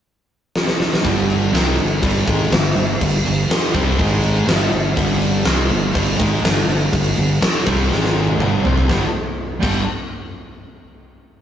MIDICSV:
0, 0, Header, 1, 6, 480
1, 0, Start_track
1, 0, Tempo, 491400
1, 1010, Time_signature, 4, 2, 24, 8
1, 11151, End_track
2, 0, Start_track
2, 0, Title_t, "Distorted electric guitar"
2, 0, Program_c, 0, 30
2, 1015, Note_on_c, 0, 43, 108
2, 1022, Note_on_c, 0, 50, 120
2, 1022, Note_on_c, 0, 55, 103
2, 1487, Note_off_c, 0, 43, 0
2, 1490, Note_off_c, 0, 50, 0
2, 1490, Note_off_c, 0, 55, 0
2, 1494, Note_on_c, 0, 48, 94
2, 1500, Note_on_c, 0, 55, 93
2, 1501, Note_on_c, 0, 60, 100
2, 1726, Note_off_c, 0, 48, 0
2, 1728, Note_on_c, 0, 43, 69
2, 1729, Note_off_c, 0, 55, 0
2, 1730, Note_off_c, 0, 60, 0
2, 1732, Note_on_c, 0, 50, 76
2, 1922, Note_off_c, 0, 43, 0
2, 1924, Note_off_c, 0, 50, 0
2, 1966, Note_on_c, 0, 43, 94
2, 1977, Note_on_c, 0, 50, 96
2, 1978, Note_on_c, 0, 55, 110
2, 2202, Note_off_c, 0, 43, 0
2, 2208, Note_off_c, 0, 50, 0
2, 2208, Note_off_c, 0, 55, 0
2, 2210, Note_on_c, 0, 44, 94
2, 2214, Note_on_c, 0, 51, 103
2, 2220, Note_on_c, 0, 56, 111
2, 2444, Note_off_c, 0, 44, 0
2, 2446, Note_off_c, 0, 51, 0
2, 2449, Note_off_c, 0, 56, 0
2, 2457, Note_on_c, 0, 43, 68
2, 2462, Note_on_c, 0, 50, 71
2, 2647, Note_off_c, 0, 43, 0
2, 2649, Note_off_c, 0, 50, 0
2, 2701, Note_on_c, 0, 43, 70
2, 2708, Note_on_c, 0, 50, 79
2, 2889, Note_off_c, 0, 43, 0
2, 2892, Note_off_c, 0, 50, 0
2, 2939, Note_on_c, 0, 43, 68
2, 2946, Note_on_c, 0, 50, 78
2, 3128, Note_off_c, 0, 43, 0
2, 3131, Note_off_c, 0, 50, 0
2, 3186, Note_on_c, 0, 43, 62
2, 3187, Note_on_c, 0, 50, 69
2, 3371, Note_off_c, 0, 43, 0
2, 3372, Note_off_c, 0, 50, 0
2, 3657, Note_on_c, 0, 48, 87
2, 3663, Note_on_c, 0, 55, 91
2, 3668, Note_on_c, 0, 60, 104
2, 3887, Note_off_c, 0, 48, 0
2, 3890, Note_off_c, 0, 55, 0
2, 3892, Note_off_c, 0, 60, 0
2, 3895, Note_on_c, 0, 44, 88
2, 3903, Note_on_c, 0, 51, 95
2, 3907, Note_on_c, 0, 56, 101
2, 4365, Note_off_c, 0, 44, 0
2, 4368, Note_off_c, 0, 51, 0
2, 4371, Note_off_c, 0, 56, 0
2, 4371, Note_on_c, 0, 43, 96
2, 4379, Note_on_c, 0, 50, 92
2, 4383, Note_on_c, 0, 55, 98
2, 4603, Note_off_c, 0, 43, 0
2, 4607, Note_off_c, 0, 50, 0
2, 4608, Note_off_c, 0, 55, 0
2, 4617, Note_on_c, 0, 43, 66
2, 4624, Note_on_c, 0, 50, 73
2, 4804, Note_off_c, 0, 43, 0
2, 4808, Note_off_c, 0, 50, 0
2, 4847, Note_on_c, 0, 43, 102
2, 4854, Note_on_c, 0, 50, 104
2, 4858, Note_on_c, 0, 55, 108
2, 5315, Note_off_c, 0, 55, 0
2, 5319, Note_off_c, 0, 43, 0
2, 5319, Note_off_c, 0, 50, 0
2, 5323, Note_on_c, 0, 48, 98
2, 5327, Note_on_c, 0, 55, 111
2, 5329, Note_on_c, 0, 60, 110
2, 5557, Note_off_c, 0, 48, 0
2, 5559, Note_off_c, 0, 55, 0
2, 5559, Note_off_c, 0, 60, 0
2, 5563, Note_on_c, 0, 43, 73
2, 5568, Note_on_c, 0, 50, 71
2, 5755, Note_off_c, 0, 43, 0
2, 5758, Note_off_c, 0, 50, 0
2, 5794, Note_on_c, 0, 43, 99
2, 5800, Note_on_c, 0, 50, 95
2, 5802, Note_on_c, 0, 55, 112
2, 6030, Note_off_c, 0, 43, 0
2, 6034, Note_off_c, 0, 50, 0
2, 6034, Note_on_c, 0, 44, 91
2, 6035, Note_off_c, 0, 55, 0
2, 6039, Note_on_c, 0, 51, 100
2, 6046, Note_on_c, 0, 56, 111
2, 6271, Note_off_c, 0, 44, 0
2, 6273, Note_off_c, 0, 51, 0
2, 6277, Note_off_c, 0, 56, 0
2, 6287, Note_on_c, 0, 43, 68
2, 6289, Note_on_c, 0, 50, 73
2, 6476, Note_off_c, 0, 43, 0
2, 6477, Note_off_c, 0, 50, 0
2, 6522, Note_on_c, 0, 43, 69
2, 6525, Note_on_c, 0, 50, 71
2, 6713, Note_off_c, 0, 43, 0
2, 6715, Note_off_c, 0, 50, 0
2, 6760, Note_on_c, 0, 43, 70
2, 6763, Note_on_c, 0, 50, 86
2, 6952, Note_off_c, 0, 43, 0
2, 6953, Note_off_c, 0, 50, 0
2, 7004, Note_on_c, 0, 43, 66
2, 7009, Note_on_c, 0, 50, 83
2, 7193, Note_off_c, 0, 43, 0
2, 7196, Note_off_c, 0, 50, 0
2, 7481, Note_on_c, 0, 48, 90
2, 7487, Note_on_c, 0, 60, 100
2, 7488, Note_on_c, 0, 55, 98
2, 7712, Note_off_c, 0, 48, 0
2, 7713, Note_on_c, 0, 44, 92
2, 7715, Note_off_c, 0, 55, 0
2, 7715, Note_off_c, 0, 60, 0
2, 7718, Note_on_c, 0, 51, 101
2, 7723, Note_on_c, 0, 56, 103
2, 8187, Note_off_c, 0, 44, 0
2, 8190, Note_off_c, 0, 51, 0
2, 8192, Note_off_c, 0, 56, 0
2, 8200, Note_on_c, 0, 43, 95
2, 8202, Note_on_c, 0, 50, 94
2, 8212, Note_on_c, 0, 55, 100
2, 8431, Note_off_c, 0, 43, 0
2, 8432, Note_off_c, 0, 50, 0
2, 8437, Note_off_c, 0, 55, 0
2, 8446, Note_on_c, 0, 48, 88
2, 8450, Note_on_c, 0, 55, 100
2, 8455, Note_on_c, 0, 60, 116
2, 8674, Note_off_c, 0, 48, 0
2, 8676, Note_off_c, 0, 55, 0
2, 8678, Note_off_c, 0, 60, 0
2, 8686, Note_on_c, 0, 43, 98
2, 8695, Note_on_c, 0, 50, 113
2, 8701, Note_on_c, 0, 55, 113
2, 8825, Note_off_c, 0, 43, 0
2, 8829, Note_off_c, 0, 50, 0
2, 8832, Note_off_c, 0, 55, 0
2, 9398, Note_on_c, 0, 43, 92
2, 9409, Note_on_c, 0, 50, 116
2, 9415, Note_on_c, 0, 55, 101
2, 9589, Note_off_c, 0, 43, 0
2, 9595, Note_off_c, 0, 50, 0
2, 9598, Note_off_c, 0, 55, 0
2, 11151, End_track
3, 0, Start_track
3, 0, Title_t, "Fingered electric bass"
3, 0, Program_c, 1, 33
3, 1020, Note_on_c, 1, 31, 88
3, 1463, Note_off_c, 1, 31, 0
3, 1482, Note_on_c, 1, 36, 90
3, 1710, Note_off_c, 1, 36, 0
3, 1728, Note_on_c, 1, 31, 78
3, 1953, Note_off_c, 1, 31, 0
3, 1985, Note_on_c, 1, 31, 89
3, 2203, Note_off_c, 1, 31, 0
3, 2223, Note_on_c, 1, 32, 96
3, 2436, Note_off_c, 1, 32, 0
3, 2441, Note_on_c, 1, 31, 82
3, 2670, Note_off_c, 1, 31, 0
3, 2690, Note_on_c, 1, 31, 78
3, 2914, Note_off_c, 1, 31, 0
3, 2941, Note_on_c, 1, 31, 77
3, 3160, Note_off_c, 1, 31, 0
3, 3171, Note_on_c, 1, 31, 79
3, 3395, Note_off_c, 1, 31, 0
3, 3658, Note_on_c, 1, 36, 95
3, 3878, Note_off_c, 1, 36, 0
3, 3903, Note_on_c, 1, 32, 90
3, 4343, Note_off_c, 1, 32, 0
3, 4365, Note_on_c, 1, 31, 104
3, 4590, Note_off_c, 1, 31, 0
3, 4607, Note_on_c, 1, 31, 81
3, 4830, Note_off_c, 1, 31, 0
3, 4852, Note_on_c, 1, 31, 90
3, 5295, Note_off_c, 1, 31, 0
3, 5318, Note_on_c, 1, 36, 90
3, 5545, Note_off_c, 1, 36, 0
3, 5552, Note_on_c, 1, 31, 82
3, 5781, Note_off_c, 1, 31, 0
3, 5812, Note_on_c, 1, 31, 91
3, 6031, Note_off_c, 1, 31, 0
3, 6054, Note_on_c, 1, 32, 96
3, 6271, Note_off_c, 1, 32, 0
3, 6279, Note_on_c, 1, 31, 85
3, 6503, Note_off_c, 1, 31, 0
3, 6522, Note_on_c, 1, 31, 75
3, 6744, Note_off_c, 1, 31, 0
3, 6767, Note_on_c, 1, 31, 79
3, 6987, Note_off_c, 1, 31, 0
3, 7015, Note_on_c, 1, 31, 83
3, 7230, Note_off_c, 1, 31, 0
3, 7487, Note_on_c, 1, 36, 90
3, 7706, Note_off_c, 1, 36, 0
3, 7727, Note_on_c, 1, 32, 96
3, 8168, Note_off_c, 1, 32, 0
3, 8195, Note_on_c, 1, 31, 95
3, 8419, Note_off_c, 1, 31, 0
3, 8440, Note_on_c, 1, 36, 100
3, 8661, Note_off_c, 1, 36, 0
3, 8688, Note_on_c, 1, 31, 90
3, 8817, Note_off_c, 1, 31, 0
3, 9405, Note_on_c, 1, 31, 87
3, 9625, Note_off_c, 1, 31, 0
3, 11151, End_track
4, 0, Start_track
4, 0, Title_t, "Muted distorted electric guitar strokes"
4, 3424, Note_on_c, 9, 29, 61
4, 3522, Note_off_c, 9, 29, 0
4, 7238, Note_on_c, 9, 29, 60
4, 7335, Note_off_c, 9, 29, 0
4, 11151, End_track
5, 0, Start_track
5, 0, Title_t, "Muted fingered electric bass strokes"
5, 3404, Note_on_c, 9, 29, 38
5, 3502, Note_off_c, 9, 29, 0
5, 7247, Note_on_c, 9, 29, 43
5, 7345, Note_off_c, 9, 29, 0
5, 11151, End_track
6, 0, Start_track
6, 0, Title_t, "Drums"
6, 543, Note_on_c, 9, 38, 78
6, 640, Note_off_c, 9, 38, 0
6, 659, Note_on_c, 9, 38, 76
6, 757, Note_off_c, 9, 38, 0
6, 781, Note_on_c, 9, 38, 94
6, 879, Note_off_c, 9, 38, 0
6, 911, Note_on_c, 9, 38, 97
6, 1009, Note_off_c, 9, 38, 0
6, 1022, Note_on_c, 9, 36, 105
6, 1031, Note_on_c, 9, 49, 80
6, 1120, Note_off_c, 9, 36, 0
6, 1128, Note_off_c, 9, 49, 0
6, 1269, Note_on_c, 9, 49, 63
6, 1367, Note_off_c, 9, 49, 0
6, 1510, Note_on_c, 9, 49, 90
6, 1515, Note_on_c, 9, 38, 117
6, 1608, Note_off_c, 9, 49, 0
6, 1613, Note_off_c, 9, 38, 0
6, 1742, Note_on_c, 9, 49, 61
6, 1839, Note_off_c, 9, 49, 0
6, 1982, Note_on_c, 9, 36, 104
6, 1982, Note_on_c, 9, 49, 87
6, 2080, Note_off_c, 9, 36, 0
6, 2080, Note_off_c, 9, 49, 0
6, 2223, Note_on_c, 9, 36, 112
6, 2228, Note_on_c, 9, 49, 69
6, 2321, Note_off_c, 9, 36, 0
6, 2326, Note_off_c, 9, 49, 0
6, 2462, Note_on_c, 9, 49, 92
6, 2467, Note_on_c, 9, 38, 127
6, 2559, Note_off_c, 9, 49, 0
6, 2564, Note_off_c, 9, 38, 0
6, 2706, Note_on_c, 9, 49, 64
6, 2803, Note_off_c, 9, 49, 0
6, 2944, Note_on_c, 9, 36, 90
6, 2946, Note_on_c, 9, 49, 83
6, 3042, Note_off_c, 9, 36, 0
6, 3044, Note_off_c, 9, 49, 0
6, 3183, Note_on_c, 9, 49, 66
6, 3281, Note_off_c, 9, 49, 0
6, 3426, Note_on_c, 9, 49, 86
6, 3431, Note_on_c, 9, 38, 121
6, 3523, Note_off_c, 9, 49, 0
6, 3528, Note_off_c, 9, 38, 0
6, 3658, Note_on_c, 9, 36, 99
6, 3659, Note_on_c, 9, 49, 55
6, 3756, Note_off_c, 9, 36, 0
6, 3756, Note_off_c, 9, 49, 0
6, 3898, Note_on_c, 9, 49, 82
6, 3900, Note_on_c, 9, 36, 116
6, 3996, Note_off_c, 9, 49, 0
6, 3998, Note_off_c, 9, 36, 0
6, 4137, Note_on_c, 9, 49, 60
6, 4235, Note_off_c, 9, 49, 0
6, 4379, Note_on_c, 9, 49, 84
6, 4384, Note_on_c, 9, 38, 121
6, 4477, Note_off_c, 9, 49, 0
6, 4482, Note_off_c, 9, 38, 0
6, 4615, Note_on_c, 9, 49, 60
6, 4713, Note_off_c, 9, 49, 0
6, 4855, Note_on_c, 9, 36, 104
6, 4855, Note_on_c, 9, 49, 79
6, 4952, Note_off_c, 9, 49, 0
6, 4953, Note_off_c, 9, 36, 0
6, 5094, Note_on_c, 9, 49, 68
6, 5192, Note_off_c, 9, 49, 0
6, 5323, Note_on_c, 9, 49, 85
6, 5328, Note_on_c, 9, 38, 115
6, 5421, Note_off_c, 9, 49, 0
6, 5426, Note_off_c, 9, 38, 0
6, 5571, Note_on_c, 9, 49, 60
6, 5669, Note_off_c, 9, 49, 0
6, 5813, Note_on_c, 9, 49, 91
6, 5814, Note_on_c, 9, 36, 105
6, 5911, Note_off_c, 9, 49, 0
6, 5912, Note_off_c, 9, 36, 0
6, 6054, Note_on_c, 9, 36, 106
6, 6057, Note_on_c, 9, 49, 71
6, 6152, Note_off_c, 9, 36, 0
6, 6155, Note_off_c, 9, 49, 0
6, 6296, Note_on_c, 9, 49, 87
6, 6301, Note_on_c, 9, 38, 115
6, 6394, Note_off_c, 9, 49, 0
6, 6399, Note_off_c, 9, 38, 0
6, 6535, Note_on_c, 9, 49, 71
6, 6633, Note_off_c, 9, 49, 0
6, 6772, Note_on_c, 9, 36, 87
6, 6775, Note_on_c, 9, 49, 89
6, 6869, Note_off_c, 9, 36, 0
6, 6873, Note_off_c, 9, 49, 0
6, 7007, Note_on_c, 9, 49, 69
6, 7104, Note_off_c, 9, 49, 0
6, 7247, Note_on_c, 9, 49, 84
6, 7252, Note_on_c, 9, 38, 125
6, 7345, Note_off_c, 9, 49, 0
6, 7350, Note_off_c, 9, 38, 0
6, 7489, Note_on_c, 9, 36, 100
6, 7489, Note_on_c, 9, 49, 63
6, 7586, Note_off_c, 9, 49, 0
6, 7587, Note_off_c, 9, 36, 0
6, 7734, Note_on_c, 9, 38, 66
6, 7832, Note_off_c, 9, 38, 0
6, 7857, Note_on_c, 9, 38, 62
6, 7955, Note_off_c, 9, 38, 0
6, 8082, Note_on_c, 9, 48, 74
6, 8180, Note_off_c, 9, 48, 0
6, 8208, Note_on_c, 9, 47, 92
6, 8306, Note_off_c, 9, 47, 0
6, 8449, Note_on_c, 9, 43, 106
6, 8547, Note_off_c, 9, 43, 0
6, 8572, Note_on_c, 9, 43, 96
6, 8669, Note_off_c, 9, 43, 0
6, 8688, Note_on_c, 9, 36, 97
6, 8688, Note_on_c, 9, 38, 89
6, 8786, Note_off_c, 9, 36, 0
6, 8786, Note_off_c, 9, 38, 0
6, 9405, Note_on_c, 9, 36, 97
6, 9408, Note_on_c, 9, 57, 86
6, 9502, Note_off_c, 9, 36, 0
6, 9506, Note_off_c, 9, 57, 0
6, 11151, End_track
0, 0, End_of_file